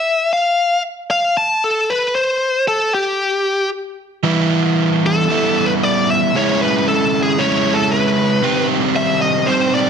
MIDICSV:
0, 0, Header, 1, 3, 480
1, 0, Start_track
1, 0, Tempo, 523560
1, 55, Time_signature, 4, 2, 24, 8
1, 9074, End_track
2, 0, Start_track
2, 0, Title_t, "Lead electric guitar"
2, 0, Program_c, 0, 29
2, 0, Note_on_c, 0, 76, 96
2, 298, Note_off_c, 0, 76, 0
2, 301, Note_on_c, 0, 77, 75
2, 745, Note_off_c, 0, 77, 0
2, 1014, Note_on_c, 0, 77, 106
2, 1238, Note_off_c, 0, 77, 0
2, 1257, Note_on_c, 0, 81, 116
2, 1504, Note_off_c, 0, 81, 0
2, 1504, Note_on_c, 0, 69, 98
2, 1742, Note_on_c, 0, 71, 93
2, 1747, Note_off_c, 0, 69, 0
2, 1969, Note_off_c, 0, 71, 0
2, 1972, Note_on_c, 0, 72, 85
2, 2421, Note_off_c, 0, 72, 0
2, 2455, Note_on_c, 0, 69, 84
2, 2694, Note_off_c, 0, 69, 0
2, 2698, Note_on_c, 0, 67, 83
2, 3381, Note_off_c, 0, 67, 0
2, 4641, Note_on_c, 0, 69, 89
2, 5191, Note_on_c, 0, 71, 91
2, 5207, Note_off_c, 0, 69, 0
2, 5237, Note_off_c, 0, 71, 0
2, 5348, Note_on_c, 0, 74, 109
2, 5584, Note_off_c, 0, 74, 0
2, 5595, Note_on_c, 0, 76, 97
2, 5811, Note_off_c, 0, 76, 0
2, 5834, Note_on_c, 0, 73, 91
2, 6051, Note_off_c, 0, 73, 0
2, 6070, Note_on_c, 0, 71, 89
2, 6289, Note_off_c, 0, 71, 0
2, 6307, Note_on_c, 0, 69, 81
2, 6601, Note_off_c, 0, 69, 0
2, 6625, Note_on_c, 0, 68, 86
2, 6774, Note_on_c, 0, 73, 109
2, 6788, Note_off_c, 0, 68, 0
2, 7095, Note_on_c, 0, 69, 86
2, 7107, Note_off_c, 0, 73, 0
2, 7253, Note_on_c, 0, 71, 74
2, 7263, Note_off_c, 0, 69, 0
2, 7939, Note_off_c, 0, 71, 0
2, 8215, Note_on_c, 0, 76, 83
2, 8445, Note_off_c, 0, 76, 0
2, 8449, Note_on_c, 0, 75, 93
2, 8680, Note_on_c, 0, 72, 89
2, 8701, Note_off_c, 0, 75, 0
2, 8930, Note_off_c, 0, 72, 0
2, 8934, Note_on_c, 0, 74, 95
2, 9074, Note_off_c, 0, 74, 0
2, 9074, End_track
3, 0, Start_track
3, 0, Title_t, "Overdriven electric guitar"
3, 0, Program_c, 1, 29
3, 3885, Note_on_c, 1, 52, 85
3, 3889, Note_on_c, 1, 55, 79
3, 3895, Note_on_c, 1, 59, 92
3, 3898, Note_on_c, 1, 64, 88
3, 4840, Note_off_c, 1, 55, 0
3, 4841, Note_off_c, 1, 52, 0
3, 4843, Note_off_c, 1, 59, 0
3, 4845, Note_on_c, 1, 52, 73
3, 4857, Note_on_c, 1, 55, 78
3, 4860, Note_on_c, 1, 59, 80
3, 4867, Note_off_c, 1, 64, 0
3, 4870, Note_on_c, 1, 64, 92
3, 5798, Note_off_c, 1, 52, 0
3, 5804, Note_off_c, 1, 55, 0
3, 5806, Note_off_c, 1, 59, 0
3, 5811, Note_off_c, 1, 64, 0
3, 5813, Note_on_c, 1, 49, 84
3, 5819, Note_on_c, 1, 56, 92
3, 5830, Note_on_c, 1, 61, 84
3, 5834, Note_on_c, 1, 64, 97
3, 6757, Note_off_c, 1, 49, 0
3, 6766, Note_off_c, 1, 56, 0
3, 6768, Note_on_c, 1, 49, 72
3, 6771, Note_off_c, 1, 61, 0
3, 6773, Note_off_c, 1, 64, 0
3, 6779, Note_on_c, 1, 56, 79
3, 6786, Note_on_c, 1, 61, 83
3, 6791, Note_on_c, 1, 64, 91
3, 7719, Note_off_c, 1, 49, 0
3, 7720, Note_on_c, 1, 48, 94
3, 7725, Note_off_c, 1, 56, 0
3, 7727, Note_on_c, 1, 51, 93
3, 7728, Note_off_c, 1, 61, 0
3, 7731, Note_off_c, 1, 64, 0
3, 7732, Note_on_c, 1, 55, 91
3, 7740, Note_on_c, 1, 67, 107
3, 7741, Note_on_c, 1, 60, 98
3, 8674, Note_off_c, 1, 48, 0
3, 8677, Note_off_c, 1, 51, 0
3, 8680, Note_off_c, 1, 55, 0
3, 8684, Note_off_c, 1, 67, 0
3, 8690, Note_on_c, 1, 48, 79
3, 8694, Note_on_c, 1, 51, 76
3, 8700, Note_off_c, 1, 60, 0
3, 8701, Note_on_c, 1, 55, 80
3, 8703, Note_on_c, 1, 60, 88
3, 8716, Note_on_c, 1, 67, 83
3, 9074, Note_off_c, 1, 48, 0
3, 9074, Note_off_c, 1, 51, 0
3, 9074, Note_off_c, 1, 55, 0
3, 9074, Note_off_c, 1, 60, 0
3, 9074, Note_off_c, 1, 67, 0
3, 9074, End_track
0, 0, End_of_file